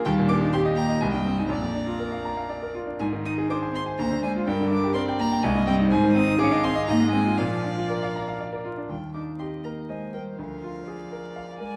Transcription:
<<
  \new Staff \with { instrumentName = "Violin" } { \time 3/4 \key ees \major \tempo 4 = 122 g''8 d'''8 c'''8 bes''8 aes''16 g''8 aes''16 | bes''2~ bes''8 r8 | aes''8 ees'''8 d'''8 c'''8 bes''8 aes''8 | g''8 d'''8 c'''8 bes''8 aes''8 g''8 |
aes''8 ees'''8 d'''8 c'''8 bes''8 aes''8 | f''2 r4 | g''8 d'''8 c'''8 bes''8 aes''8 g''8 | f''2~ f''8 aes''8 | }
  \new Staff \with { instrumentName = "Violin" } { \time 3/4 \key ees \major g'4 g'4 ees''4 | d''2~ d''8 r8 | r4 c''2 | bes'4 d''4 ees''4 |
c''4 f''4 ees''4 | d''2~ d''8 r8 | r4 ees''4 c''4 | bes'4 d''2 | }
  \new Staff \with { instrumentName = "Grand piano" } { \time 3/4 \key ees \major ees,16 bes,16 bes16 ees'16 g'16 ees''16 g''16 ees''16 c,16 g,16 c'16 ees'16 | bes,,16 f,16 d'16 f'16 bes'16 f''16 bes''16 f''16 d''16 bes'16 f'16 d'16 | aes,16 ees16 ees'16 aes'16 c''16 aes''16 c'''16 aes''16 d,16 d16 d'16 f'16 | g,16 d16 d'16 g'16 bes'16 g''16 bes''16 g''16 c,16 g,16 c'16 ees'16 |
aes,16 ees16 c'16 ees'16 aes'16 ees''16 aes''16 ees''16 aes,16 aes16 c'16 f'16 | bes,16 f16 d'16 f'16 bes'16 f''16 bes''16 f''16 d''16 bes'16 f'16 d'16 | ees,8 ees'8 g'8 bes'8 ees''8 bes'8 | d,8 f'8 aes'8 bes'8 f''8 bes'8 | }
  \new Staff \with { instrumentName = "Cello" } { \time 3/4 \key ees \major g8 d'8 c'8 bes8 aes16 g8 aes16 | bes2~ bes8 r8 | aes8 ees'8 d'8 c'8 bes8 aes8 | g8 d'8 c'8 bes8 aes8 g8 |
aes8 ees'8 d'8 c'8 bes8 aes8 | f2 r4 | g8 d'8 c'8 bes8 aes8 g8 | f2~ f8 aes8 | }
>>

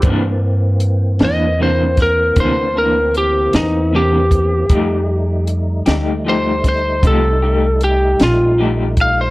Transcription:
<<
  \new Staff \with { instrumentName = "Lead electric guitar" } { \time 12/8 \key c \mixolydian \tempo 4. = 51 r4. ees''8 c''8 bes'8 c''8 bes'8 g'8 ees'8 g'4~ | g'4 r4 c''8 c''8 a'4 g'8 f'8 r8 f''16 c''16 | }
  \new Staff \with { instrumentName = "Clean electric guitar" } { \time 12/8 \key c \mixolydian <c e bes d'>8 r4 <e bes d'>8 <c e bes d'>8 r8 <c e bes d'>8 <e bes d'>8 r4 <c e bes d'>8 r8 | <f a ees' g'>8 r4 <a ees' g'>8 <f a ees' g'>8 r8 <f a ees' g'>8 <a ees' g'>8 r4 <f a ees' g'>8 r8 | }
  \new Staff \with { instrumentName = "Tonewheel organ" } { \time 12/8 \key c \mixolydian d''8 r1 r4. | r1. | }
  \new Staff \with { instrumentName = "Tonewheel organ" } { \time 12/8 \key c \mixolydian <e bes c'>1. | <g a ees'>1. | }
  \new Staff \with { instrumentName = "Upright bass" } { \clef bass \time 12/8 \key c \mixolydian g,4. e,4. d,4. e,4. | f,4. d,4. c,4. bes,,4. | }
  \new DrumStaff \with { instrumentName = "Drums" } \drummode { \time 12/8 <hh bd>4 hh8 <hh sn>4 <hh bd sn>8 <hh bd>4 hh8 <hh sn>4 <hh bd>8 | <hh bd>4 hh8 <hh sn>4 <hh bd sn>8 <hh bd>4 hh8 <hh sn>4 <hh bd>8 | }
>>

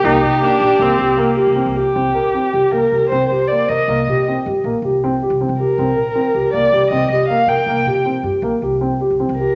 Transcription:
<<
  \new Staff \with { instrumentName = "Violin" } { \time 5/4 \key bes \mixolydian \tempo 4 = 157 g'1 r8 g'8~ | g'2 bes'4 c''8 c''8 d''8 ees''8~ | ees''4 r2. r8 bes'8~ | bes'2 d''4 ees''8 ees''8 f''8 g''8~ |
g''4 r2. r8 bes'8 | }
  \new Staff \with { instrumentName = "Grand piano" } { \time 5/4 \key bes \mixolydian bes8 g'8 bes8 g'8 bes8 g'8 bes8 g'8 c'8 g'8 | c'8 bes'8 c'8 g'8 bes8 g'8 c'8 g'8 bes8 bes'8 | bes8 g'8 c'8 g'8 bes8 g'8 c'8 g'8 c'8 g'8 | c'8 bes'8 c'8 g'8 bes8 g'8 c'8 g'8 bes8 bes'8 |
bes8 g'8 c'8 g'8 bes8 g'8 c'8 g'8 c'8 g'8 | }
  \new Staff \with { instrumentName = "Viola" } { \time 5/4 \key bes \mixolydian ees'4 d'4 c'4 bes4. r8 | r1 r4 | r1 r4 | r1 r4 |
r1 r4 | }
  \new Staff \with { instrumentName = "Upright bass" } { \clef bass \time 5/4 \key bes \mixolydian c,8 c8 r8 bes,,16 r16 c,16 r16 c,4~ c,16 c,8 c,8 r16 | c,8 bes,,8 r8 c,16 r16 c,8 c,16 r16 c,8 c,8 r8 c16 r16 | c,8 c8 r8 g,16 r16 bes,,16 r16 c,4~ c,16 c,8 c,8 r16 | c,8 bes,,8 r8 c,16 r16 c,8 c,16 r16 c,8 c,8 r8 c16 r16 |
c,8 c8 r8 g,16 r16 bes,,16 r16 c,4~ c,16 c,8 c,8 r16 | }
>>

